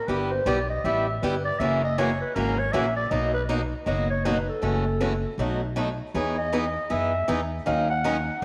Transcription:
0.08 0.38 G1 medium
0.08 0.29 G3 medium
0.08 0.30 B3 medium
0.08 0.30 E4 medium
0.08 0.30 G4 medium
0.08 0.32 B4 medium
0.31 0.49 C5 loud
0.46 0.78 B1 medium
0.46 0.57 G3 medium
0.46 0.57 B3 medium
0.46 0.58 E4 medium
0.46 0.58 G4 medium
0.46 0.69 D5 medium
0.69 0.86 D#5 medium
0.84 1.16 A1 medium
0.84 1.05 G3 medium
0.84 1.06 B3 medium
0.84 1.06 E4 medium
0.84 1.06 G4 medium
0.84 1.07 E5 loud
1.08 1.23 G4 soft
1.22 1.54 G1 medium
1.22 1.34 G3 medium
1.22 1.34 B3 medium
1.22 1.34 E4 loud
1.22 1.34 G4 medium
1.22 1.44 B4 medium
1.45 1.61 D5 medium
1.59 2.20 F#1 medium
1.59 1.81 C#3 medium
1.59 1.81 E3 medium
1.59 1.81 A#3 medium
1.59 1.81 C#4 medium
1.59 1.81 F#4 medium
1.59 1.83 E5 medium
1.84 2.00 D#5 medium
1.98 2.09 C#3 medium
1.98 2.09 E3 medium
1.98 2.09 A#3 medium
1.98 2.09 C#4 medium
1.98 2.09 F#4 loud
1.98 2.21 C#5 medium
2.21 2.37 B4 medium
2.35 2.68 G#1 medium
2.35 2.57 C#3 medium
2.35 2.57 E3 medium
2.35 2.57 A#3 medium
2.35 2.57 C#4 medium
2.35 2.57 F#4 medium
2.35 2.60 A#4 medium
2.59 2.74 C#5 medium
2.73 3.06 A#1 medium
2.73 2.84 C#3 medium
2.73 2.85 E3 medium
2.73 2.85 A#3 medium
2.73 2.85 C#4 medium
2.73 2.85 F#4 loud
2.73 2.96 E5 medium
2.96 3.12 D5 medium
3.10 3.72 B1 medium
3.10 3.32 B2 medium
3.10 3.32 F#3 medium
3.10 3.32 A#3 medium
3.10 3.32 D#4 medium
3.10 3.32 F#4 medium
3.10 3.33 D#5 medium
3.34 3.43 B4 medium
3.49 3.60 B2 medium
3.49 3.60 F#3 medium
3.49 3.60 A#3 medium
3.49 3.60 D#4 loud
3.49 3.61 F#4 medium
3.86 4.47 F#1 medium
3.86 4.08 B2 medium
3.86 4.08 F#3 medium
3.86 4.08 A#3 medium
3.86 4.08 D#4 medium
3.86 4.08 F#4 medium
3.86 4.09 D#5 medium
4.10 4.26 C#5 medium
4.25 4.36 B2 medium
4.25 4.36 F#3 medium
4.25 4.37 A#3 medium
4.25 4.37 D#4 loud
4.25 4.37 F#4 medium
4.25 4.48 B4 medium
4.49 5.35 A4 medium
4.62 5.24 F#1 medium
4.62 4.83 C#3 medium
4.62 4.84 E3 medium
4.62 4.84 A3 medium
4.62 4.84 C#4 medium
4.62 4.84 F#4 medium
5.01 5.12 C#3 medium
5.01 5.12 E3 medium
5.01 5.12 A3 medium
5.01 5.12 C#4 medium
5.01 5.12 F#4 medium
5.38 5.99 B1 medium
5.38 5.60 B2 medium
5.38 5.60 F#3 medium
5.38 5.60 A3 medium
5.38 5.60 D#4 medium
5.38 5.60 F#4 medium
5.76 5.88 B2 medium
5.76 5.88 F#3 medium
5.76 5.88 A3 medium
5.76 5.88 D#4 loud
5.76 5.88 F#4 medium
6.14 6.75 E2 medium
6.14 6.36 E3 medium
6.14 6.36 B3 medium
6.14 6.36 D#4 medium
6.14 6.36 G#4 medium
6.14 6.37 C#5 medium
6.38 6.93 D#5 medium
6.53 6.64 E3 medium
6.53 6.64 B3 medium
6.53 6.64 D#4 medium
6.53 6.64 G#4 medium
6.90 7.23 F#2 medium
6.90 7.11 E3 medium
6.90 7.11 B3 medium
6.90 7.11 D#4 medium
6.90 7.12 G#4 medium
6.90 7.29 E5 medium
7.28 7.61 E2 medium
7.28 7.39 E3 medium
7.28 7.40 B3 medium
7.28 7.40 D#4 medium
7.28 7.40 G#4 loud
7.66 8.28 D#2 medium
7.66 7.87 D#3 medium
7.66 7.87 F#3 medium
7.66 7.88 C#4 medium
7.66 7.88 D#4 medium
7.66 7.88 A#4 medium
7.66 7.88 F5 medium
7.90 8.44 F#5 medium
8.04 8.16 D#3 medium
8.04 8.16 F#3 medium
8.04 8.16 C#4 medium
8.04 8.16 D#4 loud
8.04 8.16 A#4 loud

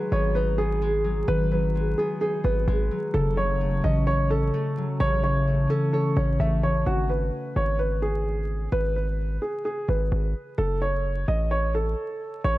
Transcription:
0.00 1.27 D#3 medium
0.00 1.03 F#3 medium
0.00 0.81 G#3 medium
0.12 1.24 G#1 loud
0.12 0.58 B3 loud
0.12 0.34 C#5 medium
0.35 2.21 D#4 medium
0.35 0.57 B4 medium
0.58 1.98 B3 medium
0.58 1.24 G#4 medium
0.82 1.33 G#3 loud
1.04 1.33 F#3 medium
1.28 1.95 G#1 loud
1.28 3.19 D#3 medium
1.28 1.50 B4 loud
1.51 2.90 F#3 medium
1.51 1.95 B4 medium
1.75 2.67 G#3 medium
1.98 2.43 B3 loud
1.98 2.19 G#4 medium
2.21 4.92 D#4 medium
2.21 2.43 G#4 medium
2.44 2.67 G#1 loud
2.44 5.54 B3 medium
2.44 3.10 B4 medium
2.68 2.90 G#1 loud
2.68 3.19 G#3 loud
2.91 3.19 F#3 medium
3.14 3.81 F#1 loud
3.14 4.99 C#3 medium
3.14 3.36 A4 medium
3.37 4.76 F#3 medium
3.37 3.81 C#5 medium
3.61 4.53 A3 medium
3.84 4.51 A1 loud
3.84 4.30 C#4 loud
3.84 4.06 D#5 medium
4.07 5.93 C#5 medium
4.07 4.29 C#5 medium
4.30 5.69 C#4 medium
4.30 4.96 A4 medium
4.54 5.47 A3 loud
4.77 5.05 F#3 medium
5.00 5.67 A1 loud
5.00 6.91 C#3 medium
5.00 5.22 C#5 loud
5.24 6.62 E3 medium
5.24 5.67 C#5 medium
5.47 6.40 A3 medium
5.70 6.16 C#4 loud
5.70 5.92 A4 medium
5.93 6.15 A4 medium
5.93 7.85 C#5 medium
6.16 6.39 A1 loud
6.16 9.06 C#4 medium
6.16 6.38 C#5 medium
6.40 6.84 A1 loud
6.40 9.74 A3 loud
6.40 6.61 E5 medium
6.63 6.91 E3 medium
6.63 6.85 C#5 medium
6.86 7.31 G#1 loud
6.86 7.08 F#4 medium
7.10 7.53 B4 medium
7.56 8.68 G#1 loud
7.56 7.78 C#5 medium
7.79 8.01 B4 medium
8.02 8.68 G#4 medium
8.72 9.39 G#1 loud
8.72 8.94 B4 loud
8.96 9.40 B4 medium
9.42 9.64 G#4 medium
9.65 9.87 G#4 medium
9.88 10.11 G#1 loud
9.88 10.54 B4 medium
10.12 10.34 G#1 loud
10.58 11.25 F#1 loud
10.58 10.80 A4 medium
10.82 11.25 C#5 medium
11.28 11.95 A1 loud
11.28 11.50 D#5 medium
11.51 11.73 C#5 medium
11.75 12.40 A4 medium
12.44 12.58 A1 loud
12.44 12.58 C#5 loud

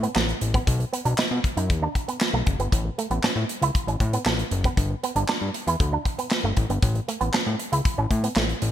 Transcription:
0.03 0.11 B3 medium
0.03 closed hi-hat medium
0.15 0.34 A1 medium
0.15 0.23 A3 medium
0.15 snare loud
0.15 clap medium
0.29 closed hi-hat soft
0.41 0.59 A1 medium
0.41 muted clean electric guitar stroke soft
0.41 closed hi-hat medium
0.54 0.62 B3 medium
0.54 kick medium
0.54 closed hi-hat soft
0.67 0.85 B1 loud
0.67 kick loud
0.67 closed hi-hat medium
0.80 muted clean electric guitar stroke soft
0.80 closed hi-hat soft
0.93 1.01 B3 medium
0.93 closed hi-hat medium
1.05 1.14 B1 loud
1.05 1.13 D4 medium
1.05 closed hi-hat soft
1.18 1.23 B2 soft
1.18 1.26 D#4 medium
1.18 snare loud
1.18 clap medium
1.31 1.40 B2 medium
1.44 muted clean electric guitar stroke soft
1.44 kick medium
1.44 closed hi-hat medium
1.57 1.71 F#2 medium
1.57 1.65 D#4 medium
1.57 closed hi-hat medium
1.70 1.88 D#2 medium
1.70 kick loud
1.70 closed hi-hat medium
1.82 1.90 D4 medium
1.95 muted clean electric guitar stroke soft
1.95 kick medium
1.95 closed hi-hat medium
2.08 2.16 B3 medium
2.08 closed hi-hat medium
2.21 snare loud
2.21 clap medium
2.33 2.42 B1 medium
2.33 2.42 A3 medium
2.46 2.56 F#1 medium
2.46 muted clean electric guitar stroke soft
2.46 kick medium
2.46 closed hi-hat medium
2.59 2.68 G1 medium
2.59 2.67 B3 medium
2.59 closed hi-hat soft
2.72 2.90 A1 medium
2.72 kick loud
2.72 closed hi-hat medium
2.85 muted clean electric guitar stroke soft
2.98 3.06 A3 medium
2.98 closed hi-hat medium
3.10 3.19 A1 medium
3.10 3.19 B3 medium
3.10 closed hi-hat soft
3.23 3.28 A2 soft
3.23 3.32 C#4 medium
3.23 snare loud
3.23 clap medium
3.36 3.45 A2 loud
3.49 muted clean electric guitar stroke soft
3.49 closed hi-hat medium
3.62 3.71 C#2 medium
3.62 3.70 E4 medium
3.62 closed hi-hat medium
3.75 kick loud
3.75 closed hi-hat medium
3.87 3.96 A1 medium
3.87 3.96 C#4 medium
3.87 closed hi-hat soft
4.00 4.18 A2 medium
4.00 muted clean electric guitar stroke soft
4.00 kick medium
4.00 closed hi-hat medium
4.13 4.21 B3 medium
4.13 closed hi-hat medium
4.26 4.44 A1 loud
4.26 4.34 A3 medium
4.26 snare loud
4.26 clap medium
4.39 closed hi-hat soft
4.51 4.69 F#1 medium
4.51 muted clean electric guitar stroke soft
4.51 closed hi-hat medium
4.64 4.73 B3 medium
4.64 kick medium
4.64 closed hi-hat soft
4.77 4.95 G1 loud
4.77 kick loud
4.77 closed hi-hat medium
4.91 muted clean electric guitar stroke soft
5.03 5.11 B3 medium
5.03 closed hi-hat medium
5.16 5.25 G1 loud
5.16 5.24 D4 medium
5.16 closed hi-hat soft
5.29 5.34 G2 soft
5.29 5.37 D4 medium
5.29 snare loud
5.29 clap medium
5.41 5.50 G2 medium
5.54 muted clean electric guitar stroke soft
5.54 closed hi-hat medium
5.67 5.76 E2 medium
5.67 5.75 E4 medium
5.67 closed hi-hat medium
5.80 5.98 D2 medium
5.80 kick loud
5.80 closed hi-hat medium
5.93 6.01 D4 medium
6.05 muted clean electric guitar stroke soft
6.05 kick medium
6.05 closed hi-hat medium
6.18 6.26 B3 medium
6.18 closed hi-hat medium
6.31 snare loud
6.31 clap medium
6.44 6.53 G1 medium
6.44 6.52 A3 medium
6.57 6.66 A1 medium
6.57 muted clean electric guitar stroke soft
6.57 kick medium
6.57 closed hi-hat medium
6.70 6.79 G1 medium
6.70 6.78 B3 medium
6.70 closed hi-hat soft
6.82 7.00 A1 loud
6.82 kick loud
6.82 closed hi-hat medium
6.95 muted clean electric guitar stroke soft
6.95 closed hi-hat soft
7.08 7.16 A3 medium
7.08 closed hi-hat medium
7.21 7.30 A1 loud
7.21 7.29 B3 medium
7.21 closed hi-hat soft
7.34 7.39 A2 soft
7.34 7.42 C#4 medium
7.34 snare loud
7.34 clap medium
7.47 7.55 A2 medium
7.59 muted clean electric guitar stroke soft
7.59 closed hi-hat medium
7.72 7.81 C#2 medium
7.72 7.80 E4 medium
7.72 closed hi-hat medium
7.85 kick loud
7.85 closed hi-hat medium
7.98 8.07 A1 medium
7.98 8.06 C#4 medium
8.10 8.28 A2 loud
8.10 muted clean electric guitar stroke soft
8.10 kick medium
8.10 closed hi-hat medium
8.24 8.31 B3 medium
8.24 closed hi-hat medium
8.36 8.54 A1 medium
8.36 8.44 A3 medium
8.36 snare medium
8.36 clap medium
8.49 closed hi-hat soft
8.62 8.72 A1 loud
8.62 muted clean electric guitar stroke soft
8.62 closed hi-hat medium

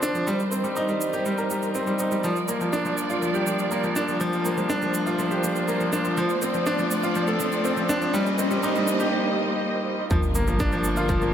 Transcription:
0.00 0.15 F3 medium
0.00 0.25 F3 medium
0.00 0.29 C4 medium
0.00 0.03 D4 medium
0.00 0.25 D4 medium
0.00 0.14 D4 medium
0.00 0.29 F4 medium
0.00 0.25 A4 medium
0.00 0.29 A4 medium
0.00 2.20 C5 medium
0.00 riser medium
0.00 shaker medium
0.15 0.27 F3 medium
0.15 shaker soft
0.27 0.39 G3 loud
0.27 6.14 G3 medium
0.27 2.22 D#4 medium
0.27 6.13 A#4 medium
0.27 shaker soft
0.40 shaker soft
0.52 0.63 C4 medium
0.52 shaker medium
0.64 0.76 G3 medium
0.64 shaker soft
0.76 0.88 D#4 medium
0.76 shaker soft
0.88 1.00 G3 medium
0.88 shaker soft
1.01 shaker medium
1.13 1.25 G4 medium
1.13 shaker soft
1.25 1.37 G3 medium
1.25 shaker soft
1.38 1.50 A#4 medium
1.38 shaker soft
1.50 1.62 G3 medium
1.50 shaker medium
1.63 shaker soft
1.75 1.82 C4 medium
1.75 shaker soft
1.87 1.99 G3 medium
1.87 shaker soft
1.99 2.11 D#4 medium
1.99 shaker medium
2.12 2.23 G3 medium
2.12 shaker soft
2.24 2.36 F3 loud
2.24 8.10 F4 medium
2.24 4.19 D5 medium
2.24 shaker soft
2.36 shaker soft
2.48 2.60 A#3 medium
2.48 shaker medium
2.61 2.73 F3 medium
2.61 shaker soft
2.73 2.85 D4 medium
2.73 shaker soft
2.85 2.97 F3 medium
2.85 shaker soft
2.98 shaker medium
3.10 3.22 F4 medium
3.10 shaker soft
3.22 3.34 F3 medium
3.22 shaker soft
3.34 3.46 G4 medium
3.34 shaker soft
3.47 3.59 F3 medium
3.47 shaker medium
3.59 shaker soft
3.71 3.78 A#3 medium
3.71 shaker soft
3.84 3.95 F3 medium
3.84 shaker soft
3.96 4.08 D4 medium
3.96 shaker medium
4.08 4.19 F3 medium
4.08 shaker soft
4.20 4.32 F3 loud
4.20 8.10 C5 medium
4.20 shaker soft
4.33 shaker soft
4.45 4.57 A#3 medium
4.45 shaker medium
4.57 4.69 F3 medium
4.57 shaker soft
4.70 4.81 D4 loud
4.70 shaker soft
4.82 4.94 F3 medium
4.82 shaker soft
4.94 shaker medium
5.06 5.18 F4 medium
5.06 shaker soft
5.19 5.31 F3 medium
5.19 shaker soft
5.31 5.43 G4 medium
5.31 shaker soft
5.44 5.55 F3 medium
5.44 shaker medium
5.56 shaker soft
5.68 5.75 A#3 medium
5.68 shaker soft
5.80 5.92 F3 medium
5.80 shaker soft
5.93 6.04 D4 medium
5.93 shaker medium
6.05 6.16 F3 medium
6.05 shaker soft
6.17 6.29 F3 loud
6.17 8.12 A3 medium
6.17 8.12 D5 medium
6.17 shaker soft
6.30 shaker soft
6.42 6.54 C4 medium
6.42 shaker medium
6.54 6.66 F3 medium
6.54 shaker soft
6.66 6.78 D4 loud
6.66 shaker soft
6.79 6.91 F3 medium
6.79 shaker soft
6.91 shaker medium
7.03 7.15 F4 medium
7.03 shaker soft
7.15 7.27 F3 medium
7.15 shaker soft
7.27 7.40 A4 medium
7.27 shaker soft
7.40 7.52 F3 medium
7.40 shaker medium
7.52 shaker soft
7.65 7.72 C4 medium
7.65 shaker soft
7.77 7.89 F3 medium
7.77 shaker soft
7.89 8.01 D4 loud
7.89 shaker medium
8.02 8.13 F3 medium
8.02 shaker soft
8.13 8.26 G3 loud
8.13 10.09 A#3 medium
8.13 10.09 G4 medium
8.13 10.09 C5 medium
8.13 10.09 D#5 medium
8.13 shaker soft
8.26 shaker soft
8.38 8.50 C4 medium
8.38 shaker medium
8.51 8.63 G3 medium
8.51 shaker soft
8.63 8.75 D#4 loud
8.63 shaker soft
8.75 8.87 G3 medium
8.75 shaker soft
8.88 shaker medium
9.00 9.12 G4 medium
9.00 shaker soft
10.11 11.34 G1 medium
10.11 10.18 F3 medium
10.11 11.34 G3 medium
10.11 11.34 D4 medium
10.11 11.34 F4 medium
10.11 11.34 A#4 medium
10.11 kick loud
10.11 sub drop medium
10.11 shaker soft
10.23 shaker soft
10.35 10.47 A#3 medium
10.35 shaker medium
10.47 10.59 F3 medium
10.47 shaker soft
10.60 10.72 D4 medium
10.60 kick medium
10.60 shaker soft
10.72 10.84 F3 loud
10.72 shaker soft
10.84 shaker medium
10.97 11.09 F4 medium
10.97 shaker soft
11.09 11.16 F3 loud
11.09 kick loud
11.09 shaker soft
11.21 11.29 A#3 medium
11.21 shaker soft

